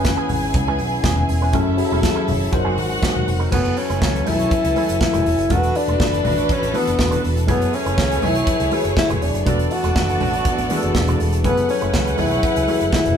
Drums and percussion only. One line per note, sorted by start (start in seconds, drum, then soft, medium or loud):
0.04 kick loud
0.04 snare loud
0.04 closed hi-hat medium
0.04 muted conga soft
0.04 high conga medium
0.29 open hi-hat medium
0.29 high conga medium
0.29 low conga medium
0.54 kick loud
0.54 closed hi-hat medium
0.79 open hi-hat medium
0.79 high conga medium
1.04 kick loud
1.04 snare loud
1.04 closed hi-hat medium
1.04 muted conga soft
1.04 high conga medium
1.18 high conga medium
1.18 low conga medium
1.29 open hi-hat medium
1.29 muted conga soft
1.53 kick loud
1.53 closed hi-hat medium
1.53 muted conga soft
1.53 low conga medium
1.78 open hi-hat medium
1.78 muted conga soft
2.03 kick loud
2.03 snare loud
2.03 closed hi-hat medium
2.03 muted conga soft
2.03 high conga medium
2.28 open hi-hat medium
2.28 high conga medium
2.28 low conga medium
2.53 kick loud
2.53 closed hi-hat medium
2.78 open hi-hat medium
2.78 muted conga soft
2.78 high conga medium
3.02 kick loud
3.02 snare loud
3.02 closed hi-hat medium
3.02 muted conga soft
3.02 high conga medium
3.17 high conga medium
3.17 low conga medium
3.28 open hi-hat medium
3.28 muted conga soft
3.52 kick loud
3.52 crash loud
3.52 muted conga soft
3.52 low conga medium
3.65 closed hi-hat soft
3.77 open hi-hat medium
3.90 closed hi-hat soft
4.02 kick loud
4.02 snare loud
4.02 high conga medium
4.16 closed hi-hat soft
4.27 open hi-hat medium
4.27 muted conga soft
4.27 high conga medium
4.27 low conga medium
4.40 closed hi-hat medium
4.51 kick loud
4.51 closed hi-hat medium
4.65 closed hi-hat medium
4.76 open hi-hat medium
4.76 muted conga soft
4.76 high conga medium
4.89 closed hi-hat medium
5.01 kick loud
5.01 snare loud
5.01 high conga medium
5.14 closed hi-hat medium
5.14 high conga medium
5.14 low conga medium
5.26 open hi-hat medium
5.26 muted conga soft
5.39 closed hi-hat soft
5.50 kick loud
5.50 closed hi-hat medium
5.50 muted conga soft
5.50 low conga medium
5.63 closed hi-hat soft
5.75 open hi-hat medium
5.75 muted conga soft
5.88 closed hi-hat soft
6.00 kick loud
6.00 snare loud
6.00 high conga medium
6.14 closed hi-hat medium
6.25 open hi-hat medium
6.25 muted conga soft
6.25 high conga medium
6.25 low conga medium
6.38 closed hi-hat soft
6.49 kick loud
6.49 closed hi-hat medium
6.63 closed hi-hat medium
6.74 open hi-hat medium
6.74 muted conga soft
6.74 high conga medium
6.87 closed hi-hat medium
6.99 kick loud
6.99 snare loud
6.99 muted conga soft
6.99 high conga medium
7.12 closed hi-hat medium
7.12 high conga medium
7.12 low conga medium
7.24 open hi-hat medium
7.24 muted conga soft
7.37 closed hi-hat soft
7.48 kick loud
7.48 closed hi-hat medium
7.48 muted conga soft
7.48 low conga medium
7.62 closed hi-hat soft
7.73 open hi-hat medium
7.86 closed hi-hat soft
7.98 kick loud
7.98 snare loud
7.98 muted conga soft
7.98 high conga medium
8.12 closed hi-hat soft
8.22 open hi-hat medium
8.22 high conga medium
8.22 low conga medium
8.35 closed hi-hat medium
8.47 kick loud
8.47 closed hi-hat medium
8.60 closed hi-hat medium
8.71 open hi-hat medium
8.71 muted conga soft
8.71 high conga medium
8.85 closed hi-hat medium
8.97 kick loud
8.97 snare loud
8.97 muted conga soft
8.97 high conga medium
9.10 closed hi-hat soft
9.10 high conga medium
9.10 low conga medium
9.22 open hi-hat medium
9.35 closed hi-hat soft
9.46 kick loud
9.46 closed hi-hat medium
9.46 muted conga soft
9.46 low conga medium
9.59 closed hi-hat soft
9.71 open hi-hat medium
9.71 muted conga soft
9.84 closed hi-hat soft
9.96 kick loud
9.96 snare loud
9.96 muted conga soft
9.96 high conga medium
10.09 closed hi-hat soft
10.20 open hi-hat medium
10.20 high conga medium
10.20 low conga medium
10.34 closed hi-hat soft
10.45 kick loud
10.45 closed hi-hat medium
10.45 muted conga soft
10.58 closed hi-hat medium
10.70 open hi-hat medium
10.70 muted conga soft
10.70 high conga medium
10.83 closed hi-hat medium
10.95 kick loud
10.95 snare loud
10.95 high conga medium
11.08 closed hi-hat medium
11.08 high conga medium
11.08 low conga medium
11.20 open hi-hat medium
11.20 muted conga soft
11.33 closed hi-hat soft
11.44 kick loud
11.44 closed hi-hat medium
11.44 muted conga soft
11.44 low conga medium
11.57 closed hi-hat soft
11.69 open hi-hat medium
11.69 muted conga soft
11.82 closed hi-hat soft
11.94 kick loud
11.94 snare loud
11.94 high conga medium
12.07 closed hi-hat soft
12.18 open hi-hat medium
12.18 muted conga soft
12.18 high conga medium
12.18 low conga medium
12.31 closed hi-hat soft
12.43 kick loud
12.43 closed hi-hat medium
12.56 closed hi-hat medium
12.68 open hi-hat medium
12.68 muted conga soft
12.68 high conga medium
12.81 closed hi-hat medium
12.93 kick loud
12.93 snare loud
12.93 muted conga soft
12.93 high conga medium
13.05 closed hi-hat medium
13.05 high conga medium
13.05 low conga medium